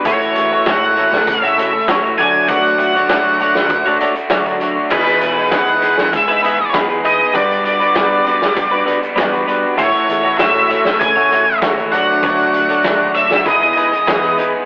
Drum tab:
CC |----------------|----------------|x---------------|----------------|
HH |xxx-xxx-xxx-xxx-|xxxxx-x-xxxxxxx-|-xx-xxx-xxx-xxx-|xxxxx-x-xxxxxxx-|
SD |----o--o----o---|----o--o----o---|----o--o----o---|----o--o----o---|
BD |o---o---o---o---|o---o---o---o---|o---o---o---o---|o---o---o---o---|

CC |----------------|----------------|
HH |xxx-xxx-xxx-xxx-|xxxxx-x-xxxxxxx-|
SD |----o--o----o---|----o--o----o---|
BD |o---o---o---o---|o---o---o---o---|